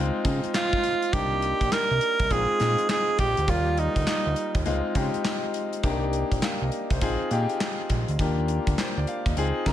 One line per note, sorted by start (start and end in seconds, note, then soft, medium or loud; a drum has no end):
0.00 0.11 C#2 loud
0.00 0.23 G#3 medium
0.00 0.23 C4 medium
0.00 0.23 D#4 medium
0.00 0.24 F4 loud
0.25 0.41 C#3 medium
0.25 1.07 G#3 medium
0.25 1.07 C4 medium
0.25 1.08 D#4 medium
0.25 1.08 F4 loud
0.25 kick medium
0.25 closed hi-hat medium
0.44 closed hi-hat medium
0.54 1.15 F4 medium
0.54 snare loud
0.54 clap medium
0.54 closed hi-hat medium
0.73 kick medium
0.84 closed hi-hat medium
1.02 closed hi-hat medium
1.13 1.53 C2 loud
1.13 2.23 A#3 medium
1.13 2.23 D4 medium
1.13 2.24 D#4 medium
1.13 1.74 G4 medium
1.13 2.24 G4 medium
1.13 kick loud
1.13 closed hi-hat medium
1.42 closed hi-hat medium
1.61 1.70 A#1 medium
1.61 kick medium
1.61 closed hi-hat medium
1.72 2.33 A#4 loud
1.72 snare loud
1.72 clap medium
1.72 closed hi-hat medium
1.91 2.00 C2 medium
2.01 closed hi-hat medium
2.20 2.29 C2 medium
2.20 kick medium
2.20 closed hi-hat soft
2.31 2.46 A#1 loud
2.31 2.58 G#3 medium
2.31 2.58 C4 medium
2.31 2.58 D#4 medium
2.31 2.59 F4 medium
2.31 2.90 G#4 loud
2.31 kick medium
2.31 closed hi-hat medium
2.60 2.76 A#2 loud
2.60 3.43 G#3 medium
2.60 3.43 C4 medium
2.60 3.43 D#4 medium
2.60 3.43 F4 medium
2.60 snare medium
2.60 closed hi-hat medium
2.78 closed hi-hat medium
2.89 3.17 G#4 medium
2.89 snare loud
2.89 clap medium
2.89 closed hi-hat medium
3.18 3.35 A#1 medium
3.18 3.51 G4 medium
3.18 kick medium
3.18 closed hi-hat medium
3.37 3.47 D2 medium
3.37 closed hi-hat medium
3.48 3.88 D#2 loud
3.48 4.58 G3 medium
3.48 4.59 A#3 medium
3.48 4.59 F4 medium
3.48 3.80 F4 medium
3.48 4.59 D5 medium
3.48 kick loud
3.48 closed hi-hat medium
3.77 4.67 D#4 medium
3.77 closed hi-hat medium
3.96 4.05 D2 medium
3.96 kick medium
3.96 closed hi-hat medium
4.07 snare loud
4.07 clap medium
4.07 closed hi-hat medium
4.26 4.35 D2 medium
4.36 closed hi-hat medium
4.55 4.64 D#2 medium
4.55 kick medium
4.55 closed hi-hat soft
4.66 4.82 C#2 loud
4.66 4.93 G#3 loud
4.66 4.94 C4 medium
4.66 4.94 D#4 medium
4.66 4.94 F4 loud
4.66 closed hi-hat medium
4.95 5.11 C#3 medium
4.95 5.78 G#3 medium
4.95 5.78 C4 medium
4.95 5.79 D#4 medium
4.95 5.79 G4 loud
4.95 kick medium
4.95 closed hi-hat medium
5.14 closed hi-hat medium
5.25 snare loud
5.25 clap medium
5.25 closed hi-hat medium
5.54 closed hi-hat medium
5.73 closed hi-hat medium
5.83 6.24 C2 loud
5.83 6.94 A#3 medium
5.83 6.94 D4 medium
5.83 6.94 D#4 medium
5.83 6.94 G4 loud
5.83 kick loud
5.83 closed hi-hat medium
6.13 closed hi-hat medium
6.32 6.41 A#1 medium
6.32 kick medium
6.32 closed hi-hat medium
6.42 6.61 F5 medium
6.42 snare loud
6.42 clap medium
6.42 closed hi-hat medium
6.62 6.70 C2 medium
6.62 6.90 D#5 medium
6.72 closed hi-hat medium
6.90 7.00 C2 medium
6.90 7.19 C5 medium
6.90 kick medium
6.90 closed hi-hat soft
7.01 7.17 A#1 medium
7.01 7.29 C4 medium
7.01 7.29 D#4 medium
7.01 7.30 F4 medium
7.01 7.30 G#4 loud
7.01 kick medium
7.01 closed hi-hat medium
7.31 7.47 A#2 loud
7.31 8.14 C4 medium
7.31 8.14 D#4 medium
7.31 8.14 F4 medium
7.31 8.14 G4 loud
7.31 closed hi-hat medium
7.49 closed hi-hat medium
7.60 snare loud
7.60 clap medium
7.60 closed hi-hat medium
7.90 8.05 A#1 medium
7.90 kick medium
7.90 closed hi-hat medium
8.08 8.17 D2 medium
8.08 closed hi-hat medium
8.19 8.59 D#2 loud
8.19 9.29 A#3 medium
8.19 9.30 D4 medium
8.19 9.30 F4 medium
8.19 9.30 G4 loud
8.19 kick loud
8.19 closed hi-hat medium
8.48 closed hi-hat medium
8.67 8.76 D2 medium
8.67 kick medium
8.67 closed hi-hat medium
8.78 8.96 C5 medium
8.78 snare loud
8.78 clap medium
8.78 closed hi-hat medium
8.97 9.06 D2 medium
8.97 9.07 D5 medium
9.07 9.25 F5 medium
9.07 closed hi-hat medium
9.26 9.35 D#2 medium
9.26 9.54 D#5 medium
9.26 kick medium
9.26 closed hi-hat soft
9.37 9.52 C#2 loud
9.37 9.64 C4 medium
9.37 9.64 D#4 medium
9.37 9.65 F4 medium
9.37 9.65 G#4 loud
9.37 closed hi-hat medium
9.66 9.73 C3 medium
9.66 9.73 C#3 loud
9.66 9.73 D#4 medium
9.66 9.73 F4 medium
9.66 9.73 A#4 loud
9.66 9.73 A#5 medium
9.66 kick medium
9.66 snare medium
9.66 closed hi-hat medium